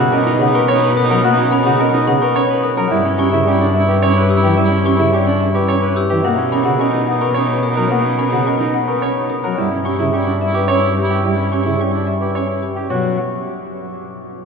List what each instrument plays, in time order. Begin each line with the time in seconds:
Already playing: cello B2
0.00 grand piano F#4, marimba F#5
0.11 pipe organ C#4, grand piano A#4, marimba D#5
0.16 oboe D#4
0.27 grand piano D#4
0.39 pipe organ C#3, marimba F#5
0.45 oboe D#4
0.55 grand piano A#4, marimba B4, glockenspiel C#6
0.68 pipe organ C#4, grand piano C#5, marimba C#5
0.74 oboe D#4
0.83 grand piano B4
0.96 marimba A#4, glockenspiel D#6
1.03 oboe D#4
1.10 pipe organ F#3, grand piano A#4, marimba A#5
1.23 pipe organ A#3, grand piano F#4, marimba F#5, glockenspiel F#6
1.32 oboe D#4
1.39 grand piano C#4
1.51 pipe organ C#4, marimba A#4, glockenspiel B5
1.62 pipe organ C#3, oboe D#4
1.66 grand piano F#4, marimba F#5
1.79 pipe organ C#4, grand piano A#4, marimba D#5
1.90 oboe D#4
1.94 grand piano D#4
2.07 pipe organ C#3, marimba F#5
2.21 oboe D#4, grand piano A#4, marimba B4, glockenspiel C#6
2.35 pipe organ C#4, marimba C#5, grand piano C#5
2.49 oboe D#4, grand piano B4
2.63 marimba A#4, glockenspiel D#6
2.77 pipe organ F#3, grand piano A#4, marimba A#5
2.90 cello G2, pipe organ G3, grand piano E4, oboe E4, marimba E5
3.05 grand piano C#4
3.18 pipe organ C#4, oboe E4, marimba G4, glockenspiel C#6
3.32 pipe organ C#3, grand piano E4, marimba E5
3.45 pipe organ C#4, oboe E4, grand piano G4, marimba D5
3.61 grand piano D4
3.74 marimba E5
3.78 oboe E4
3.87 grand piano G4, marimba B4, glockenspiel D6
4.02 pipe organ C#4, marimba C#5, grand piano C#5
4.07 oboe E4
4.17 grand piano B4
4.29 marimba G4, glockenspiel E6
4.36 oboe E4
4.43 pipe organ E3, grand piano G4, marimba G5
4.57 pipe organ G3, grand piano E4, marimba E5
4.64 oboe E4
4.72 grand piano C#4
4.85 pipe organ C#4, marimba G4, glockenspiel C#6
4.93 oboe E4
4.99 pipe organ C#3, grand piano E4, marimba E5
5.13 pipe organ C#4, grand piano G4, marimba D5
5.22 oboe E4
5.27 grand piano D4
5.40 marimba E5
5.51 oboe E4, grand piano G4, marimba B4, glockenspiel D6
5.68 pipe organ C#4, grand piano C#5, marimba C#5
5.80 oboe E4, grand piano B4
5.96 marimba G4, glockenspiel E6
6.10 pipe organ E3, grand piano G4, marimba G5
6.23 cello B2, pipe organ A#3, oboe D#4, grand piano F#4, marimba F#5
6.38 grand piano C#4
6.52 pipe organ C#4, oboe D#4, marimba A#4, glockenspiel B5
6.65 pipe organ C#3, grand piano F#4, marimba F#5
6.79 pipe organ C#4, oboe D#4, grand piano A#4, marimba D#5
6.93 grand piano D#4
7.07 oboe D#4, marimba F#5
7.21 grand piano A#4, marimba B4, glockenspiel C#6
7.34 pipe organ C#4, grand piano C#5, marimba C#5
7.38 oboe D#4
7.63 marimba A#4, glockenspiel D#6
7.69 oboe D#4
7.76 pipe organ F#3, grand piano A#4, marimba A#5
7.90 pipe organ A#3, grand piano F#4, marimba F#5
7.98 oboe D#4
8.05 grand piano C#4
8.18 pipe organ C#4, marimba A#4, glockenspiel B5
8.27 oboe D#4
8.32 pipe organ C#3, grand piano F#4, marimba F#5
8.46 pipe organ C#4, grand piano A#4, marimba D#5
8.56 oboe D#4
8.60 grand piano D#4
8.74 marimba F#5
8.87 oboe D#4, grand piano A#4, marimba B4, glockenspiel C#6
9.02 pipe organ C#4, marimba C#5, grand piano C#5
9.16 oboe D#4
9.30 marimba A#4, glockenspiel D#6
9.43 pipe organ F#3, grand piano A#4, marimba A#5
9.57 cello G2, pipe organ G3, grand piano E4, oboe E4, marimba E5
9.71 grand piano C#4
9.85 pipe organ C#4, oboe E4, marimba G4, glockenspiel C#6
9.99 pipe organ C#3, grand piano E4, marimba E5
10.13 pipe organ C#4, oboe E4, grand piano G4, marimba D5
10.27 grand piano D4
10.41 oboe E4, marimba E5
10.54 grand piano G4, marimba B4, glockenspiel D6
10.68 pipe organ C#4, grand piano C#5, marimba C#5
10.73 oboe E4
10.97 marimba G4
11.02 oboe E4
11.10 grand piano G4, marimba G5
11.24 pipe organ G3, grand piano E4, marimba E5
11.31 oboe E4
11.38 grand piano C#4
11.52 pipe organ C#4, marimba G4, glockenspiel C#6
11.61 oboe E4
11.66 pipe organ C#3, grand piano E4, marimba E5
11.80 pipe organ C#4, grand piano G4, marimba D5
11.90 oboe E4
11.94 grand piano D4
12.07 marimba E5
12.18 oboe E4, grand piano G4, marimba B4, glockenspiel D6
12.35 pipe organ C#4, marimba C#5, grand piano C#5
12.47 oboe E4
12.62 marimba G4
12.75 grand piano G4, marimba G5
12.90 cello B2, pipe organ F#3, grand piano F#4, marimba C#5, glockenspiel C#6